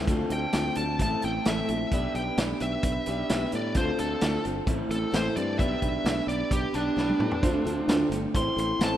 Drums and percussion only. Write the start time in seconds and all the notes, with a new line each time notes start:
0.07 kick, closed hi-hat
0.30 closed hi-hat
0.53 snare, closed hi-hat
0.75 closed hi-hat
0.99 kick, closed hi-hat
1.22 closed hi-hat
1.45 snare, closed hi-hat
1.68 closed hi-hat
1.92 kick, closed hi-hat
2.15 closed hi-hat
2.37 snare, closed hi-hat
2.60 closed hi-hat
2.83 kick, closed hi-hat
3.06 closed hi-hat
3.29 snare, closed hi-hat
3.52 closed hi-hat
3.74 kick, closed hi-hat
3.98 closed hi-hat
4.21 snare, closed hi-hat
4.45 closed hi-hat
4.67 kick, closed hi-hat
4.91 closed hi-hat
5.13 snare, closed hi-hat
5.36 closed hi-hat
5.59 kick, closed hi-hat
5.82 kick, closed hi-hat
6.05 snare, closed hi-hat
6.29 closed hi-hat
6.51 kick, closed hi-hat
6.74 closed hi-hat
6.97 snare
7.09 high tom
7.20 mid tom
7.31 floor tom
7.43 kick, closed hi-hat
7.66 closed hi-hat
7.89 snare, closed hi-hat
8.12 closed hi-hat
8.35 kick, closed hi-hat
8.58 closed hi-hat
8.80 snare, closed hi-hat